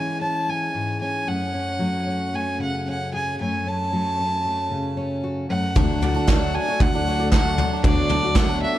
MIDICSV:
0, 0, Header, 1, 8, 480
1, 0, Start_track
1, 0, Tempo, 528169
1, 1400, Time_signature, 4, 2, 24, 8
1, 4755, Tempo, 519031
1, 8041, End_track
2, 0, Start_track
2, 0, Title_t, "Fiddle"
2, 0, Program_c, 0, 110
2, 0, Note_on_c, 0, 80, 79
2, 189, Note_off_c, 0, 80, 0
2, 194, Note_on_c, 0, 81, 75
2, 450, Note_on_c, 0, 80, 67
2, 464, Note_off_c, 0, 81, 0
2, 912, Note_off_c, 0, 80, 0
2, 917, Note_on_c, 0, 80, 65
2, 1166, Note_on_c, 0, 78, 77
2, 1179, Note_off_c, 0, 80, 0
2, 2137, Note_on_c, 0, 80, 73
2, 2151, Note_off_c, 0, 78, 0
2, 2370, Note_off_c, 0, 80, 0
2, 2380, Note_on_c, 0, 78, 68
2, 2595, Note_off_c, 0, 78, 0
2, 2633, Note_on_c, 0, 78, 66
2, 2843, Note_off_c, 0, 78, 0
2, 2852, Note_on_c, 0, 80, 65
2, 3071, Note_off_c, 0, 80, 0
2, 3099, Note_on_c, 0, 80, 69
2, 3338, Note_on_c, 0, 81, 78
2, 3352, Note_off_c, 0, 80, 0
2, 4764, Note_off_c, 0, 81, 0
2, 5005, Note_on_c, 0, 78, 75
2, 5974, Note_on_c, 0, 80, 101
2, 5987, Note_off_c, 0, 78, 0
2, 6220, Note_on_c, 0, 78, 97
2, 6234, Note_off_c, 0, 80, 0
2, 6678, Note_off_c, 0, 78, 0
2, 6683, Note_on_c, 0, 78, 96
2, 7129, Note_off_c, 0, 78, 0
2, 7172, Note_on_c, 0, 74, 102
2, 7644, Note_on_c, 0, 78, 113
2, 7658, Note_off_c, 0, 74, 0
2, 7881, Note_off_c, 0, 78, 0
2, 7890, Note_on_c, 0, 76, 106
2, 8041, Note_off_c, 0, 76, 0
2, 8041, End_track
3, 0, Start_track
3, 0, Title_t, "Kora"
3, 0, Program_c, 1, 46
3, 5253, Note_on_c, 1, 62, 84
3, 5493, Note_on_c, 1, 74, 90
3, 5609, Note_off_c, 1, 62, 0
3, 5613, Note_on_c, 1, 62, 88
3, 5730, Note_on_c, 1, 66, 76
3, 5844, Note_off_c, 1, 74, 0
3, 5848, Note_on_c, 1, 74, 76
3, 5963, Note_off_c, 1, 62, 0
3, 5966, Note_on_c, 1, 62, 91
3, 6092, Note_off_c, 1, 66, 0
3, 6096, Note_on_c, 1, 66, 81
3, 6218, Note_off_c, 1, 74, 0
3, 6221, Note_on_c, 1, 74, 82
3, 6341, Note_off_c, 1, 62, 0
3, 6344, Note_on_c, 1, 62, 91
3, 6460, Note_off_c, 1, 66, 0
3, 6464, Note_on_c, 1, 66, 76
3, 6567, Note_off_c, 1, 74, 0
3, 6571, Note_on_c, 1, 74, 81
3, 6699, Note_off_c, 1, 62, 0
3, 6703, Note_on_c, 1, 62, 94
3, 6820, Note_off_c, 1, 66, 0
3, 6823, Note_on_c, 1, 66, 74
3, 6942, Note_off_c, 1, 74, 0
3, 6946, Note_on_c, 1, 74, 72
3, 7062, Note_off_c, 1, 62, 0
3, 7066, Note_on_c, 1, 62, 90
3, 7168, Note_off_c, 1, 66, 0
3, 7172, Note_on_c, 1, 66, 78
3, 7289, Note_off_c, 1, 74, 0
3, 7292, Note_on_c, 1, 74, 90
3, 7408, Note_off_c, 1, 62, 0
3, 7412, Note_on_c, 1, 62, 96
3, 7522, Note_off_c, 1, 66, 0
3, 7525, Note_on_c, 1, 66, 84
3, 7637, Note_off_c, 1, 74, 0
3, 7641, Note_on_c, 1, 74, 84
3, 7760, Note_off_c, 1, 62, 0
3, 7764, Note_on_c, 1, 62, 95
3, 7895, Note_off_c, 1, 66, 0
3, 7899, Note_on_c, 1, 66, 82
3, 7999, Note_off_c, 1, 74, 0
3, 8003, Note_on_c, 1, 74, 83
3, 8041, Note_off_c, 1, 62, 0
3, 8041, Note_off_c, 1, 66, 0
3, 8041, Note_off_c, 1, 74, 0
3, 8041, End_track
4, 0, Start_track
4, 0, Title_t, "Twelve-string acoustic guitar"
4, 0, Program_c, 2, 25
4, 5237, Note_on_c, 2, 50, 84
4, 5244, Note_on_c, 2, 54, 78
4, 5247, Note_on_c, 2, 57, 83
4, 5247, Note_on_c, 2, 62, 91
4, 5252, Note_on_c, 2, 66, 96
4, 5467, Note_off_c, 2, 54, 0
4, 5477, Note_off_c, 2, 57, 0
4, 5478, Note_on_c, 2, 54, 60
4, 5480, Note_off_c, 2, 50, 0
4, 5485, Note_off_c, 2, 62, 0
4, 5487, Note_off_c, 2, 66, 0
4, 5488, Note_on_c, 2, 57, 59
4, 5496, Note_on_c, 2, 62, 70
4, 5501, Note_on_c, 2, 66, 75
4, 5587, Note_off_c, 2, 66, 0
4, 5598, Note_on_c, 2, 66, 69
4, 5600, Note_off_c, 2, 54, 0
4, 5600, Note_off_c, 2, 62, 0
4, 5605, Note_off_c, 2, 57, 0
4, 5611, Note_on_c, 2, 62, 56
4, 5620, Note_on_c, 2, 57, 53
4, 5720, Note_off_c, 2, 66, 0
4, 5723, Note_off_c, 2, 62, 0
4, 5724, Note_on_c, 2, 50, 89
4, 5727, Note_off_c, 2, 57, 0
4, 5727, Note_on_c, 2, 54, 89
4, 5735, Note_on_c, 2, 62, 103
4, 5738, Note_on_c, 2, 57, 100
4, 5743, Note_on_c, 2, 66, 112
4, 6078, Note_off_c, 2, 66, 0
4, 6084, Note_off_c, 2, 50, 0
4, 6086, Note_off_c, 2, 54, 0
4, 6089, Note_off_c, 2, 62, 0
4, 6089, Note_on_c, 2, 66, 59
4, 6091, Note_off_c, 2, 57, 0
4, 6107, Note_on_c, 2, 62, 57
4, 6119, Note_on_c, 2, 57, 51
4, 6318, Note_off_c, 2, 66, 0
4, 6329, Note_on_c, 2, 66, 60
4, 6335, Note_off_c, 2, 62, 0
4, 6341, Note_off_c, 2, 57, 0
4, 6347, Note_on_c, 2, 62, 54
4, 6354, Note_on_c, 2, 57, 50
4, 6444, Note_off_c, 2, 57, 0
4, 6446, Note_off_c, 2, 66, 0
4, 6450, Note_on_c, 2, 54, 62
4, 6453, Note_off_c, 2, 62, 0
4, 6456, Note_on_c, 2, 57, 70
4, 6464, Note_on_c, 2, 62, 63
4, 6479, Note_on_c, 2, 66, 80
4, 6561, Note_off_c, 2, 66, 0
4, 6567, Note_off_c, 2, 54, 0
4, 6569, Note_off_c, 2, 57, 0
4, 6572, Note_on_c, 2, 66, 62
4, 6574, Note_off_c, 2, 62, 0
4, 6587, Note_on_c, 2, 62, 57
4, 6599, Note_on_c, 2, 57, 48
4, 6686, Note_off_c, 2, 57, 0
4, 6686, Note_on_c, 2, 50, 88
4, 6687, Note_off_c, 2, 66, 0
4, 6688, Note_off_c, 2, 62, 0
4, 6688, Note_on_c, 2, 54, 83
4, 6698, Note_on_c, 2, 57, 88
4, 6699, Note_on_c, 2, 62, 89
4, 6708, Note_on_c, 2, 66, 101
4, 6921, Note_off_c, 2, 54, 0
4, 6924, Note_off_c, 2, 50, 0
4, 6930, Note_off_c, 2, 57, 0
4, 6930, Note_off_c, 2, 62, 0
4, 6932, Note_on_c, 2, 54, 70
4, 6935, Note_off_c, 2, 66, 0
4, 6948, Note_on_c, 2, 57, 70
4, 6950, Note_on_c, 2, 62, 75
4, 6959, Note_on_c, 2, 66, 70
4, 7166, Note_off_c, 2, 54, 0
4, 7171, Note_on_c, 2, 50, 82
4, 7172, Note_off_c, 2, 57, 0
4, 7175, Note_off_c, 2, 62, 0
4, 7178, Note_on_c, 2, 54, 90
4, 7180, Note_off_c, 2, 66, 0
4, 7183, Note_on_c, 2, 57, 90
4, 7188, Note_on_c, 2, 62, 97
4, 7193, Note_on_c, 2, 66, 88
4, 7398, Note_off_c, 2, 54, 0
4, 7406, Note_off_c, 2, 50, 0
4, 7409, Note_on_c, 2, 54, 64
4, 7411, Note_off_c, 2, 57, 0
4, 7414, Note_off_c, 2, 62, 0
4, 7417, Note_off_c, 2, 66, 0
4, 7421, Note_on_c, 2, 57, 64
4, 7426, Note_on_c, 2, 62, 68
4, 7436, Note_on_c, 2, 66, 78
4, 7524, Note_off_c, 2, 66, 0
4, 7525, Note_off_c, 2, 54, 0
4, 7530, Note_off_c, 2, 57, 0
4, 7533, Note_off_c, 2, 62, 0
4, 7535, Note_on_c, 2, 66, 58
4, 7549, Note_on_c, 2, 62, 62
4, 7553, Note_on_c, 2, 57, 47
4, 7647, Note_off_c, 2, 66, 0
4, 7654, Note_off_c, 2, 62, 0
4, 7655, Note_on_c, 2, 50, 86
4, 7656, Note_off_c, 2, 57, 0
4, 7659, Note_on_c, 2, 54, 94
4, 7668, Note_on_c, 2, 62, 92
4, 7669, Note_on_c, 2, 57, 99
4, 7674, Note_on_c, 2, 66, 91
4, 7990, Note_off_c, 2, 66, 0
4, 8001, Note_on_c, 2, 66, 57
4, 8006, Note_off_c, 2, 50, 0
4, 8007, Note_off_c, 2, 62, 0
4, 8008, Note_off_c, 2, 54, 0
4, 8013, Note_off_c, 2, 57, 0
4, 8041, Note_off_c, 2, 66, 0
4, 8041, End_track
5, 0, Start_track
5, 0, Title_t, "String section"
5, 0, Program_c, 3, 48
5, 5238, Note_on_c, 3, 57, 73
5, 5241, Note_on_c, 3, 54, 79
5, 5241, Note_on_c, 3, 62, 90
5, 7141, Note_off_c, 3, 57, 0
5, 7195, Note_on_c, 3, 59, 80
5, 8041, Note_off_c, 3, 54, 0
5, 8041, Note_off_c, 3, 59, 0
5, 8041, Note_off_c, 3, 62, 0
5, 8041, End_track
6, 0, Start_track
6, 0, Title_t, "Steel-string acoustic guitar"
6, 0, Program_c, 4, 25
6, 0, Note_on_c, 4, 52, 40
6, 0, Note_on_c, 4, 56, 40
6, 0, Note_on_c, 4, 61, 39
6, 0, Note_on_c, 4, 64, 43
6, 189, Note_off_c, 4, 61, 0
6, 193, Note_on_c, 4, 61, 37
6, 437, Note_off_c, 4, 56, 0
6, 441, Note_on_c, 4, 56, 42
6, 671, Note_on_c, 4, 44, 42
6, 921, Note_off_c, 4, 61, 0
6, 925, Note_on_c, 4, 61, 43
6, 1127, Note_off_c, 4, 44, 0
6, 1131, Note_off_c, 4, 52, 0
6, 1155, Note_on_c, 4, 42, 51
6, 1159, Note_off_c, 4, 56, 0
6, 1163, Note_on_c, 4, 57, 44
6, 1393, Note_off_c, 4, 61, 0
6, 1397, Note_on_c, 4, 61, 39
6, 1401, Note_off_c, 4, 64, 0
6, 1627, Note_on_c, 4, 54, 41
6, 1632, Note_off_c, 4, 57, 0
6, 1635, Note_on_c, 4, 57, 38
6, 1875, Note_off_c, 4, 61, 0
6, 1879, Note_on_c, 4, 61, 38
6, 2113, Note_off_c, 4, 57, 0
6, 2116, Note_on_c, 4, 57, 41
6, 2352, Note_on_c, 4, 49, 45
6, 2602, Note_off_c, 4, 61, 0
6, 2616, Note_on_c, 4, 61, 39
6, 2849, Note_on_c, 4, 68, 49
6, 3049, Note_off_c, 4, 49, 0
6, 3052, Note_off_c, 4, 42, 0
6, 3057, Note_off_c, 4, 68, 0
6, 3061, Note_off_c, 4, 61, 0
6, 3093, Note_on_c, 4, 42, 53
6, 3094, Note_off_c, 4, 57, 0
6, 3097, Note_on_c, 4, 57, 42
6, 3331, Note_on_c, 4, 61, 40
6, 3558, Note_off_c, 4, 57, 0
6, 3565, Note_off_c, 4, 54, 0
6, 3569, Note_on_c, 4, 54, 44
6, 3571, Note_on_c, 4, 57, 41
6, 3797, Note_off_c, 4, 61, 0
6, 3808, Note_on_c, 4, 61, 42
6, 4032, Note_off_c, 4, 57, 0
6, 4043, Note_on_c, 4, 57, 40
6, 4273, Note_on_c, 4, 49, 45
6, 4506, Note_off_c, 4, 61, 0
6, 4517, Note_on_c, 4, 61, 44
6, 4758, Note_on_c, 4, 66, 46
6, 4966, Note_off_c, 4, 49, 0
6, 4969, Note_off_c, 4, 61, 0
6, 4970, Note_off_c, 4, 57, 0
6, 4970, Note_off_c, 4, 66, 0
6, 4973, Note_off_c, 4, 54, 0
6, 4974, Note_off_c, 4, 42, 0
6, 4995, Note_on_c, 4, 42, 50
6, 5002, Note_on_c, 4, 57, 42
6, 5210, Note_off_c, 4, 42, 0
6, 5211, Note_off_c, 4, 57, 0
6, 8041, End_track
7, 0, Start_track
7, 0, Title_t, "Fingered electric bass"
7, 0, Program_c, 5, 33
7, 5245, Note_on_c, 5, 38, 96
7, 5994, Note_off_c, 5, 38, 0
7, 6208, Note_on_c, 5, 38, 100
7, 6954, Note_off_c, 5, 38, 0
7, 7164, Note_on_c, 5, 38, 104
7, 7909, Note_off_c, 5, 38, 0
7, 8041, End_track
8, 0, Start_track
8, 0, Title_t, "Drums"
8, 5244, Note_on_c, 9, 36, 109
8, 5244, Note_on_c, 9, 43, 110
8, 5336, Note_off_c, 9, 36, 0
8, 5337, Note_off_c, 9, 43, 0
8, 5487, Note_on_c, 9, 43, 79
8, 5579, Note_off_c, 9, 43, 0
8, 5723, Note_on_c, 9, 38, 127
8, 5726, Note_on_c, 9, 36, 114
8, 5728, Note_on_c, 9, 39, 87
8, 5816, Note_off_c, 9, 38, 0
8, 5818, Note_off_c, 9, 36, 0
8, 5820, Note_off_c, 9, 39, 0
8, 6206, Note_on_c, 9, 43, 125
8, 6208, Note_on_c, 9, 36, 127
8, 6299, Note_off_c, 9, 43, 0
8, 6300, Note_off_c, 9, 36, 0
8, 6685, Note_on_c, 9, 38, 123
8, 6687, Note_on_c, 9, 36, 118
8, 6691, Note_on_c, 9, 39, 97
8, 6778, Note_off_c, 9, 38, 0
8, 6780, Note_off_c, 9, 36, 0
8, 6783, Note_off_c, 9, 39, 0
8, 6926, Note_on_c, 9, 43, 83
8, 7019, Note_off_c, 9, 43, 0
8, 7167, Note_on_c, 9, 36, 123
8, 7168, Note_on_c, 9, 43, 118
8, 7260, Note_off_c, 9, 36, 0
8, 7261, Note_off_c, 9, 43, 0
8, 7402, Note_on_c, 9, 43, 84
8, 7494, Note_off_c, 9, 43, 0
8, 7640, Note_on_c, 9, 38, 124
8, 7643, Note_on_c, 9, 36, 127
8, 7647, Note_on_c, 9, 39, 111
8, 7733, Note_off_c, 9, 38, 0
8, 7735, Note_off_c, 9, 36, 0
8, 7739, Note_off_c, 9, 39, 0
8, 8041, End_track
0, 0, End_of_file